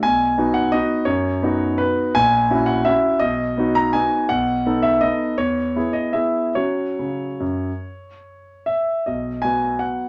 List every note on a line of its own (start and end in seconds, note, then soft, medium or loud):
0.03 0.38 B1 medium
0.03 0.56 G#5 medium
0.38 0.70 B3 soft
0.38 0.70 D#4 soft
0.38 0.71 F#4 soft
0.54 0.73 F#5 medium
0.72 1.05 B3 soft
0.72 1.05 D#4 soft
0.72 1.06 F#4 soft
0.72 1.08 D#5 medium
1.05 1.41 F#2 medium
1.05 1.79 C#5 medium
1.42 2.12 B3 soft
1.42 2.12 D#4 soft
1.42 2.13 F#4 medium
1.78 2.15 B4 medium
2.15 2.49 A#1 medium
2.15 2.68 G#5 loud
2.50 2.83 C#4 soft
2.50 2.83 E4 soft
2.50 2.84 F#4 soft
2.66 2.86 F#5 medium
2.85 3.18 C#4 soft
2.85 3.19 E4 soft
2.85 3.19 F#4 soft
2.85 3.22 E5 medium
3.19 3.56 B1 medium
3.19 3.75 D#5 medium
3.57 3.91 B3 soft
3.57 3.92 D#4 soft
3.57 3.93 F#4 soft
3.75 3.95 A#5 medium
3.93 4.27 B3 soft
3.93 4.27 D#4 soft
3.93 4.27 F#4 soft
3.93 4.30 G#5 medium
4.29 4.64 B1 medium
4.29 4.83 F#5 medium
4.66 4.99 B3 soft
4.66 4.99 D#4 soft
4.66 4.99 A4 soft
4.82 5.02 E5 medium
5.01 5.35 B3 soft
5.01 5.35 D#4 soft
5.01 5.36 A4 soft
5.01 5.38 D#5 medium
5.38 5.75 E2 soft
5.38 5.95 C#5 medium
5.76 6.12 B3 soft
5.76 6.12 E4 soft
5.76 6.13 G#4 soft
5.93 6.15 D#5 medium
6.13 6.52 B3 soft
6.13 6.52 E4 soft
6.13 6.52 G#4 soft
6.13 6.56 E5 medium
6.55 6.85 F#3 soft
6.55 6.90 C#4 soft
6.55 6.90 F#4 soft
6.55 8.88 C#5 medium
6.99 7.29 C#3 soft
7.40 7.70 F#2 soft
8.66 9.07 E5 medium
9.06 9.43 B1 soft
9.06 9.43 D#5 medium
9.42 10.09 F#3 soft
9.42 10.09 B3 soft
9.42 10.09 F#4 soft
9.42 9.80 G#5 medium
9.79 10.09 F#5 medium